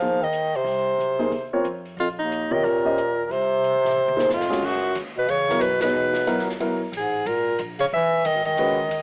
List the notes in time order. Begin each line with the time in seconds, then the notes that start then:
Already playing: F3 F5
0.00 D#2 A#3 D#4 G#4 C5, open hi-hat
0.22 D#3 D#5
0.33 closed hi-hat
0.54 C3 C5, open hi-hat
0.64 C2, open hi-hat
0.98 B1, closed hi-hat
1.19 A#3 D#4 G#4 C5, open hi-hat
1.32 D#2, open hi-hat
1.53 C4 F4 A#4 C#5
1.64 F2, closed hi-hat
1.86 open hi-hat
1.97 A#1 F2 F4, open hi-hat
2.18 D#2 D#4
2.32 closed hi-hat
2.51 C3 D#3 F4 A#4 C#5 D#5, muted upright bass stroke
2.64 D#2 A#2 A#4, open hi-hat
2.85 C#4 G4 C5 D#5
2.98 closed hi-hat
3.25 A#2 A#4
3.30 C2 C3 C5, open hi-hat
3.64 closed hi-hat
3.73 D#2
3.84 A1, snare, open hi-hat
3.96 D#2
4.08 high tom
4.16 A#3 D#4 G#4 C5, snare
4.29 F2 G#2, snare
4.34 F4
4.40 snare
4.49 G#3 C#4 F#4 G#4, snare
4.62 C#2 F#2 F#4, kick, crash
4.95 D#2, hi-hat pedal, ride
5.17 B2 B4
5.28 E2 C#3 C#5, ride
5.49 F#3 B3 E4 A#4, snare
5.58 F#2 A#2 B2 A#4 B4, hi-hat pedal, ride
5.81 B2 B3 D#4 G#4 B4 C#5, snare, ride
5.94 E2
6.13 snare
6.27 D#2 F#3 B3 E4 A#4, hi-hat pedal, ride
6.39 snare
6.49 snare
6.60 B1 F#3 B3 E4 A#4, ride
6.92 A1 G#2, hi-hat pedal, ride
6.97 G#4
7.26 G#1 A#2 A#4, ride
7.59 A#1, hi-hat pedal, ride
7.79 C#3 C#5, ride
7.92 B1 E3 E5
8.24 B1 D#3 D#5, hi-hat pedal, ride
8.35 G#1
8.44 E1 D#3 D#5, ride
8.57 C#2 G#3 C#4 F#4 B4, ride
8.78 kick
8.89 D#2, hi-hat pedal, ride